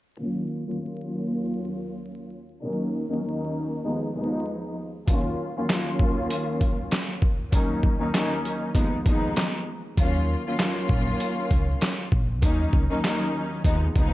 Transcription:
0.19 D#2 F#3 A#3 C#4 F4
0.67 D#2 F#3 A#3 C#4 F4
0.80 D#2 F#3 A#3 C#4 F4
2.62 D#2 F#3 A#3 C#4 D#4
3.09 D#2 F#3 A#3 C#4 D#4
3.24 D#2 F#3 A#3 C#4 D#4
3.84 D#2 F3 G#3 B3 D#4
4.16 D#2 F3 G#3 B3 D#4
5.08 D#2 F#3 A#3 C#4 F4, kick, closed hi-hat
5.56 D#2 F#3 A#3 C#4 F4
5.69 D#2 F#3 A#3 C#4 F4, snare, clap, closed hi-hat
5.99 kick
6.30 closed hi-hat
6.61 kick, closed hi-hat
6.91 snare, clap, closed hi-hat
7.22 kick
7.52 D#2 F#3 A#3 C#4 D#4, kick, closed hi-hat
7.83 kick
7.99 D#2 F#3 A#3 C#4 D#4
8.14 D#2 F#3 A#3 C#4 D#4, snare, clap, closed hi-hat
8.45 closed hi-hat
8.74 D#2 F3 G#3 B3 D#4, kick, closed hi-hat
9.06 D#2 F3 G#3 B3 D#4, kick, closed hi-hat
9.36 snare, clap, closed hi-hat
9.97 D#2 F#3 A#3 C#4 F4, kick, closed hi-hat
10.46 D#2 F#3 A#3 C#4 F4
10.59 D#2 F#3 A#3 C#4 F4, snare, clap, closed hi-hat
10.89 A#1, kick
11.20 closed hi-hat
11.51 C#2, kick, closed hi-hat
11.81 snare, clap, closed hi-hat
12.12 A#1, kick
12.42 D#2 F#3 A#3 C#4 D#4, kick, closed hi-hat
12.73 C#2, kick
12.89 D#2 F#3 A#3 C#4 D#4
13.04 D#2 F#3 A#3 C#4 D#4, snare, clap, closed hi-hat
13.64 D#2 F3 G#3 B3 D#4, kick, closed hi-hat
13.96 C#2 D#2 F3 G#3 B3 D#4, kick, closed hi-hat

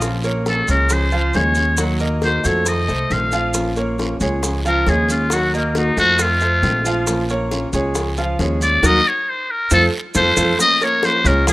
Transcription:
Already playing: A#1 F3 F4 F5
0.01 F3 A#3 C#4 F4, high bongo, long guiro, maracas
0.24 A#3 A#4 C#5, maracas
0.46 F3 A#3 C#4 F4 A4, high bongo, short guiro, maracas
0.68 C#2 G#3 A#3 C#4 F4 G#4 A#4 C#5, high bongo, short guiro, maracas
0.89 F3 G#3 C#4 F4 C5, high bongo, long guiro, maracas
1.11 F3 F4 F5, muted nylon-string guitar stroke, high bongo, maracas
1.33 D#2 C#3 F3 G#3 C#4 F4 G#4 C#5, high bongo, low bongo, short guiro, maracas
1.55 G#3 C#4 F4, high bongo, short guiro, maracas
1.77 D#3 F#3 A#3 D#4 F#4 F#5, high bongo, long guiro, maracas
1.99 A#3 A#4 D#5, maracas
2.22 D#3 A#3 D#4 F#4 C5, high bongo, short guiro, maracas
2.44 F2 A3 A#3 D#4 F#4 A4 C5 C#5, high bongo, short guiro, maracas
2.66 D#3 A3 C4 F4 D#5, high bongo, long guiro, maracas
2.88 C2 A3 A4 C5, muted nylon-string guitar stroke, high bongo, maracas
3.10 A#1 C3 D#3 A3 C4 F4 F5, high bongo, low bongo, short guiro, maracas
3.32 F3 A3 C4 F4 F5, high bongo, short guiro, maracas
3.53 F3 A#3 C#4 F4, high bongo, long guiro, maracas
3.76 A#3 A#4 C#5, maracas
3.98 F3 A#3 C#4 F4, high bongo, short guiro, maracas
4.20 C#2 G#3 A#3 C#4 F4 G#4 C#5, high bongo, short guiro, maracas
4.43 F3 G#3 C#4 F4, high bongo, long guiro, maracas
4.64 F3 F4 A#4 F5, muted nylon-string guitar stroke, high bongo, maracas
4.87 D#2 C#3 F3 G#3 C#4 F4 G#4 C#5, high bongo, low bongo, short guiro, maracas
5.08 G#3 C#4 F4, high bongo, short guiro, maracas
5.30 D#3 F#3 A#3 D#4 F#4 F#5, high bongo, long guiro, maracas
5.53 A#3 A#4 D#5, maracas
5.75 D#3 A#3 D#4 F#4, high bongo, short guiro, maracas
5.97 F2 A3 A#3 D#4 F#4 A4 C5, high bongo, short guiro, maracas
6.19 D#3 A3 C4 F4, high bongo, long guiro, maracas
6.41 A3 A4 C5, muted nylon-string guitar stroke, high bongo, maracas
6.62 A#1 C3 D#3 A3 C4 F4, high bongo, low bongo, short guiro, maracas
6.84 F3 A3 C4 F4 F5, high bongo, short guiro, maracas
7.06 F3 A#3 C#4 F4, high bongo, long guiro, maracas
7.29 A#3 A#4 C#5, maracas
7.51 F3 A#3 C#4 F4, high bongo, short guiro, maracas
7.73 C#2 G#3 A#3 C#4 F4 G#4 C#5, high bongo, short guiro, maracas
7.95 F3 G#3 C#4 F4, high bongo, long guiro, maracas
8.17 F3 F4 F5, muted nylon-string guitar stroke, high bongo, maracas
8.39 D#2 C#3 F3 G#3 C#4 F4 G#4 C#5, high bongo, low bongo, short guiro, maracas
8.61 G#3 C#4 F4 D5, high bongo, short guiro, maracas
8.83 D#2 F#3 A#3 D#4 F#4 A#4 D#5, low bongo, long guiro, maracas
9.08 C#5
9.30 C5
9.51 A#4
9.70 F2 F3 A3 C4 F4 A4 C5, low bongo, long guiro, maracas
10.14 F2 F3 A3 C4 F4 A4 C5, low bongo, long guiro, maracas
10.37 F2 F3 A3 C4 F4 A4 C5, low bongo, long guiro, maracas
10.59 F3 A#3 C#4 F4 D#5, high bongo, long guiro, maracas
10.81 A#3 A#4 C#5, maracas
11.03 F3 A#3 C#4 F4 C5, high bongo, short guiro, maracas
11.24 C#2 G#3 A#3 C#4 F4 G#4 A#4 C#5, high bongo, short guiro, maracas
11.47 F3 G#3 C#4 F4 G#4 F5, high bongo, long guiro, maracas

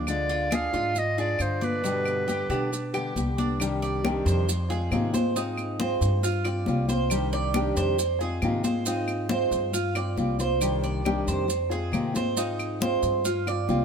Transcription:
Already playing: D2 D4
0.07 D3 G#3 D4 F4 D5, high conga, claves, maracas
0.29 F4, high conga, maracas
0.51 D3 G#3 D4 F4 G#4 F5, high conga, claves, maracas
0.73 G#2 G#3 D4 F4, high conga, maracas
0.95 D#5, muted nylon-string guitar stroke, high conga, maracas
1.18 G#3 D4 F4 G#4 D5, high conga, maracas
1.39 G2 D3 D4 F4 C5, high conga, claves, maracas
1.61 B4 D5, high conga, maracas
1.83 B2 D3 G3 B3 D4 G4, high conga, maracas
2.06 high conga, claves, maracas
2.27 D3 G3 B3 G4, high conga, maracas
2.49 B2 D3 G3 B3 D4 G4, high conga, maracas
2.72 muted nylon-string guitar stroke, high conga, maracas
2.94 D3 G3 B3 G4, high conga, claves, maracas
3.15 C2 D3 G3 B3 G4, high conga, maracas
3.38 D4, high conga, maracas
3.59 C3 D#3 G3 D4 G4, claves, maracas
3.82 D5, high conga, maracas
4.04 C3 D#3 G3 D4 G4, high conga, claves, maracas
4.25 F2 C5, high conga, maracas
4.48 muted nylon-string guitar stroke, high conga, maracas
4.70 G#3 C4 F4 G#4, high conga, maracas
4.91 G#2 C3 D#3 G#3 C4 F4, high conga, claves, maracas
5.13 G#3 C4 F4 C5, high conga, maracas
5.35 G#3 C4 D#4 F4, high conga, maracas
5.58 high conga, claves, maracas
5.79 G#3 C4 F4 C5, high conga, maracas
6.01 G2, high conga, maracas
6.23 F4, muted nylon-string guitar stroke, high conga, maracas
6.45 C4 F4 D5, high conga, claves, maracas
6.66 C2 G3 C4 F4, high conga, maracas
6.88 C4 F4 C5, high conga, maracas
7.10 C3 D#3 G3 D4 G4, claves, maracas
7.33 D5, high conga, maracas
7.54 C3 D#3 G3 D4 G4, high conga, claves, maracas
7.76 F2 C5, high conga, maracas
7.99 muted nylon-string guitar stroke, high conga, maracas
8.21 G#3 C4 F4 G#4, high conga, maracas
8.42 G#2 C3 D#3 G#3 C4 F4, high conga, claves, maracas
8.64 G#3 C4 F4 C5, high conga, maracas
8.86 G#3 C4 D#4 F4, high conga, maracas
9.08 high conga, claves, maracas
9.29 G#3 C4 F4 C5, high conga, maracas
9.51 G2, high conga, maracas
9.73 F4, muted nylon-string guitar stroke, high conga, maracas
9.95 C4 F4 D5, high conga, claves, maracas
10.17 C2 G3 C4 F4, high conga, maracas
10.39 C4 F4 C5, high conga, maracas
10.61 C3 D#3 G3 D4 G4, claves, maracas
10.84 D5, high conga, maracas
11.05 C3 D#3 G3 D4 G4, high conga, claves, maracas
11.27 F2 C5, high conga, maracas
11.48 muted nylon-string guitar stroke, high conga, maracas
11.70 G#3 C4 F4 G#4, high conga, maracas
11.92 G#2 C3 D#3 G#3 C4 F4, high conga, claves, maracas
12.14 G#3 C4 F4 C5, high conga, maracas
12.36 G#3 C4 D#4 F4, high conga, maracas
12.60 high conga, claves, maracas
12.80 G#3 C4 F4 C5, high conga, maracas
13.02 G2, high conga, maracas
13.25 F4, muted nylon-string guitar stroke, high conga, maracas
13.47 C4 F4 D5, high conga, claves, maracas
13.68 C2 G3 C4 F4, high conga, maracas

